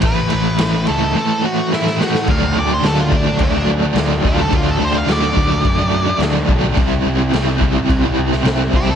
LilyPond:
<<
  \new Staff \with { instrumentName = "Lead electric guitar" } { \time 4/4 \key a \mixolydian \tempo 4 = 107 b'4. a'8 a'8 fis'8 e'8 fis'8 | \key d \mixolydian f''8 d''16 c''16 a'16 f'16 d'8 d'8 r4 f'16 a'16 | f'16 a'16 c''16 f''16 d''2 r4 | r2. r8 g'16 a'16 | }
  \new Staff \with { instrumentName = "Overdriven electric guitar" } { \time 4/4 \key a \mixolydian <a, e a>8 <a, e a>8 <a, e a>8 <a, e a>8 <a, e a>8 <a, e a>8 <a, e a>8 <a, e a>8 | \key d \mixolydian <d fis a d'>8 <d fis a d'>16 <fis a d'>16 <d fis a d'>16 <fis a d'>16 <d fis a d'>16 <fis a d'>8 <fis a d'>8 <fis a d'>16 <d fis a d'>8 <d fis a d'>16 <fis a d'>16 | <d fis a d'>8 <d fis a d'>16 <fis a d'>16 <d fis a d'>16 <fis a d'>16 <d fis a d'>16 <fis a d'>8 <fis a d'>8 <fis a d'>16 <d fis a d'>8 <d fis a d'>16 <fis a d'>16 | <c g c' e'>8 <c g c' e'>16 <g c' e'>16 <c g c' e'>16 <g c' e'>16 <c g c' e'>16 <g c' e'>8 <g c' e'>8 <g c' e'>16 <c g c' e'>8 <c g c' e'>16 <g c' e'>16 | }
  \new Staff \with { instrumentName = "Picked electric bass" } { \clef bass \time 4/4 \key a \mixolydian a,,8 a,,8 a,,8 cis,8 r2 | \key d \mixolydian d,8 d,8 d,4 d,8 d,8 d,8 d,8 | d,8 d,8 d,8 d,8 fis,4 d,8 b,,8 | c,8 c,8 c,4 c,8 c,8 c,8 c,8 | }
  \new DrumStaff \with { instrumentName = "Drums" } \drummode { \time 4/4 <bd cymr>8 cymr8 <cymr sn>8 cymr8 r4 sn16 sn16 sn16 sn16 | <cymc bd>4 <cymc sn>8 bd8 <cymc bd>4 <cymc sn>8 bd8 | <cymc bd>4 <cymc sn>8 bd8 <cymc bd>4 <cymc sn>8 bd8 | <cymc bd>4 <cymc sn>8 bd8 <cymc bd>8. sn16 <cymc sn>8 bd8 | }
>>